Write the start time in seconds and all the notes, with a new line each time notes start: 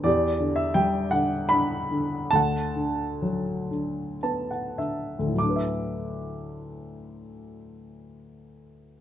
0.04 E2 G4 D5
0.40 D3
0.56 E5
0.74 G3 G5
1.11 D3 F#5
1.49 D4 B5
1.91 D3
2.31 D2 A5
2.35 F#5
2.76 D3
3.22 F#3
3.71 D3
4.23 B3 A5
4.51 F#5
4.78 D3 E5
5.19 D2
5.27 A2
5.34 F#3
5.38 D4 D6
5.49 B4
5.56 E5